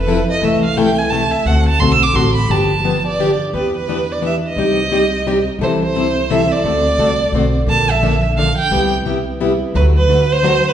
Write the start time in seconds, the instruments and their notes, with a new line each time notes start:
Already playing: upright bass F1, violin B4
0.07 steel-string acoustic guitar F3 C4 E4 A4
0.31 violin D#5
0.42 upright bass C2, steel-string acoustic guitar C3 E3 A3 E4 A4, violin E5
0.64 violin F5
0.77 steel-string acoustic guitar C3 E3 A3 E4 A4, violin G5
0.98 violin G#5
1.10 steel-string acoustic guitar C3 E3 A3 E4 A4, violin A5
1.31 violin E5
1.45 upright bass D2, steel-string acoustic guitar D3 A3 C4 F#4 A4, violin F#5
1.68 violin A5
1.80 upright bass B1, steel-string acoustic guitar D3 A3 C4 F#4 A4, violin C6
1.91 violin E6
2.03 violin D6
2.14 upright bass A1, steel-string acoustic guitar D3 A3 C4 F#4 A4, violin C6
2.35 violin B5
2.49 upright bass G1, steel-string acoustic guitar D3 F3 B3 D4 G4, violin A5
2.85 steel-string acoustic guitar D3 F3 B3 D4 G4
3.07 violin D5
3.19 steel-string acoustic guitar D3 F3 B3 D4 G4
3.53 upright bass E2, steel-string acoustic guitar E3 B3 D4 G4, violin B4
3.77 violin B4
3.88 steel-string acoustic guitar E3 B3 D4 G4
4.12 violin D5
4.22 steel-string acoustic guitar E3 B3 D4 G4, violin E5
4.47 violin D#5
4.56 upright bass C2, steel-string acoustic guitar C3 G3 C4 D#4 G4 D5
4.91 steel-string acoustic guitar C3 G3 C4 D#4 G4 D5
5.26 steel-string acoustic guitar C3 G3 C4 D#4 G4 D5
5.59 upright bass C2, steel-string acoustic guitar C3 E3 G3 C4 E4 A4
5.63 violin C5
5.83 violin C5
5.95 steel-string acoustic guitar C3 E3 G3 C4 E4 A4
6.30 steel-string acoustic guitar C3 E3 G3 C4 E4 A4, violin E5
6.52 violin D5
6.64 upright bass D2, steel-string acoustic guitar D3 A3 C4 F#4 A4
6.97 upright bass C2, steel-string acoustic guitar D3 A3 C4 F#4 A4
7.32 upright bass B1, steel-string acoustic guitar D3 A3 C4 F#4 A4
7.67 upright bass A#1, steel-string acoustic guitar D3 F3 A#3 D4 A4, violin A5
7.90 violin E5
8.02 steel-string acoustic guitar D3 F3 A#3 D4 A4
8.38 steel-string acoustic guitar D3 F3 A#3 D4 A4, violin F5
8.58 violin G5
8.71 upright bass C2, steel-string acoustic guitar C3 G3 B3 E4 G4
9.05 steel-string acoustic guitar C3 G3 B3 E4 G4
9.40 steel-string acoustic guitar C3 G3 B3 E4 G4
9.74 upright bass D2, steel-string acoustic guitar D3 F#3 A3 D4 F#4, violin B4
9.98 violin B4
10.08 steel-string acoustic guitar D3 F#3 A3 D4 F#4
10.32 violin C5
10.43 steel-string acoustic guitar D3 F#3 A3 D4 F#4
10.68 violin B4